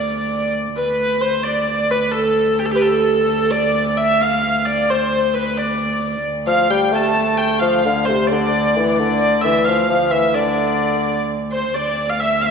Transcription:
Already playing: D2 D5
0.77 D2 B4
1.21 C5
1.43 D5
1.90 B4
2.11 A4
2.59 G4
2.65 A4
2.71 G4
2.75 B4
2.82 A4
3.51 D5
3.97 E5
4.21 F5
4.65 D5
4.90 C5
5.34 B4
5.57 D5
6.25 D2
6.47 F3 F5
6.70 G3 G5
6.92 A3 A5
7.38 G5
7.59 F3 F5
7.85 D3
8.05 C3 C5
8.27 D5
8.31 D3
8.77 E3
8.95 D5
9.00 D3
9.42 E3 E5
9.64 F3 F5
9.89 F3
10.10 E3 E5
10.28 E3
10.35 D3 D5
11.52 C5
11.75 D2 D5
12.10 F5
12.20 E5
12.41 F5
12.46 E5

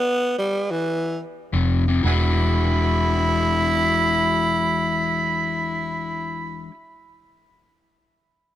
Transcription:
Already playing: B3
0.38 G3
0.71 E3
1.53 F1 F2 C3
1.88 F2 C3
2.03 E1 E3 G#3 D4 F#5 G#5 B5
2.07 E4 F#4

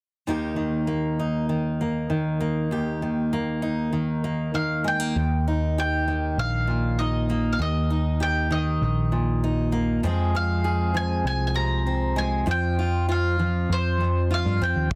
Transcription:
0.27 D#2 D#3 A#3 D#4 G4
0.56 D#3
0.87 A#3
1.19 D#4
1.49 D#3
1.81 A#3
2.10 D#3
2.41 A#3
2.71 D#2 G4
3.02 D#3
3.33 A#3
3.62 D#4
3.93 D#3
4.24 A#3
4.54 D#3 F5
4.84 G#3 G5
5.00 A#3
5.16 D#2
5.48 D#4
5.78 G4 G5
6.08 D#3
6.38 A#1 F5
6.67 A#2
6.99 D#4 D#5
7.30 A#3
7.53 F5
7.59 D#2 D#5
7.90 D#4
8.20 G4 G5
8.51 D#3 D#5
8.81 A#1
9.12 A#2
9.44 D#4
9.72 A#3
10.03 F2 F3 G#3 C4 G#4
10.35 C4 F5
10.64 G#4
10.94 F3 G#5
11.25 C2 G#5
11.47 G#5
11.54 C3 A#5
11.87 C4
12.16 G#3 G#5
12.46 F2 F3 C4 F4
12.51 G5
12.79 F4
13.09 F4 F5
13.39 F3
13.69 F2 C5
14.00 F2
14.31 F4 F5
14.45 G2
14.61 F2 C4 G5
14.76 D#2
14.91 kick, floor tom

